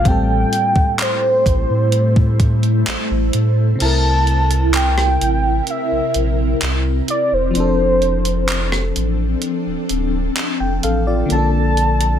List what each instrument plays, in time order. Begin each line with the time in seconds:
0.01 fm electric piano A2 G3, ambient pad E4 G4 C5
0.05 sub bass A1, ambient pad A3, fm electric piano C4, soft synth lead G5, kick, closed hi-hat
0.10 fm electric piano A4
0.53 closed hi-hat
0.76 kick
0.99 soft synth lead C5, clap, closed hi-hat
1.46 sub bass A1, kick, closed hi-hat
1.70 sub bass A2
1.92 ambient pad A4, closed hi-hat
2.16 kick
2.40 kick, closed hi-hat
2.63 closed hi-hat
2.87 sub bass A1, clap, closed hi-hat
3.11 sub bass A1
3.33 sub bass A2, closed hi-hat
3.76 fm electric piano C3 C4
3.80 sub bass C2, ambient pad C3 C4 E4 A#4, fm electric piano E4, soft synth lead A5, closed hi-hat, crash
3.85 fm electric piano A#4
4.27 closed hi-hat
4.51 closed hi-hat
4.74 soft synth lead G5, clap, closed hi-hat
4.98 cross-stick
5.21 sub bass A1, closed hi-hat
5.67 soft synth lead E5, closed hi-hat
5.92 sub bass A#1
6.14 sub bass A#1, closed hi-hat
6.62 sub bass C2, clap, closed hi-hat
7.08 soft synth lead D5, closed hi-hat
7.32 sub bass E1, soft synth lead C5
7.51 fm electric piano F3 C4
7.55 sub bass F1, ambient pad F3 C4 D4 A4, fm electric piano D4, closed hi-hat
7.60 fm electric piano A4
8.02 closed hi-hat
8.25 closed hi-hat
8.48 clap, closed hi-hat
8.72 cross-stick
8.96 sub bass A1, closed hi-hat
9.42 closed hi-hat
9.67 sub bass D1
9.89 sub bass D1, closed hi-hat
10.37 clap, closed hi-hat
10.60 sub bass F1, fm electric piano G5
10.83 sub bass A1, fm electric piano A4 F5, closed hi-hat
11.07 fm electric piano F4 D5
11.26 fm electric piano D3 A#3
11.30 sub bass A#1, ambient pad A#3 F4 D5, fm electric piano C#4, soft synth lead A5, closed hi-hat
11.35 fm electric piano D4 A4
11.77 closed hi-hat
12.01 closed hi-hat